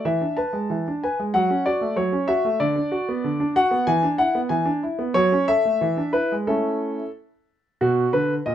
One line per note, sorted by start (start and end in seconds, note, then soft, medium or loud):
0.05 0.21 E3 medium
0.05 0.38 E5 medium
0.21 0.38 D4 soft
0.37 0.54 B4 soft
0.37 1.01 A5 medium
0.53 0.70 G#3 soft
0.70 0.85 E3 soft
0.88 1.03 D4 soft
1.03 1.19 B4 soft
1.03 1.22 G#5 medium
1.19 1.34 G#3 soft
1.34 1.49 F#3 medium
1.34 1.65 F#5 medium
1.50 1.66 C#4 soft
1.66 1.82 F#4 soft
1.66 1.94 D5 medium
1.81 1.97 A3 soft
1.96 2.12 F#3 medium
1.96 2.28 C#5 medium
2.12 2.29 C#4 soft
2.28 2.45 F#4 medium
2.28 2.60 E5 medium
2.45 2.60 A3 soft
2.60 2.76 D3 medium
2.60 3.56 D5 medium
2.76 2.93 D4 soft
2.92 3.08 F#4 soft
3.09 3.25 B3 soft
3.24 3.39 D3 medium
3.40 3.57 D4 medium
3.56 3.73 F#4 soft
3.56 3.88 F#5 medium
3.71 3.87 B3 medium
3.87 4.03 E3 medium
3.87 4.06 G#5 medium
4.03 4.20 D4 medium
4.18 4.36 E4 medium
4.18 4.38 F#5 medium
4.35 4.52 B3 soft
4.49 4.66 E3 medium
4.49 4.69 G#5 medium
4.65 4.83 D4 medium
4.83 5.00 E4 soft
4.99 5.15 B3 soft
5.14 5.31 F#3 medium
5.14 5.44 C#5 medium
5.32 5.49 C#4 medium
5.48 5.66 A4 medium
5.48 6.11 E5 medium
5.65 5.82 A3 soft
5.81 5.97 E3 medium
5.97 6.15 D4 soft
6.13 6.31 E4 soft
6.13 6.34 B4 medium
6.32 6.49 G#3 soft
6.47 6.95 A3 soft
6.47 7.01 C#4 soft
6.47 7.02 E4 soft
6.47 7.08 A4 medium
7.81 8.04 B2 medium
7.81 8.10 F#4 medium
8.13 8.37 D3 medium
8.13 8.33 B4 medium
8.46 8.55 A#2 medium
8.46 8.55 D#5 medium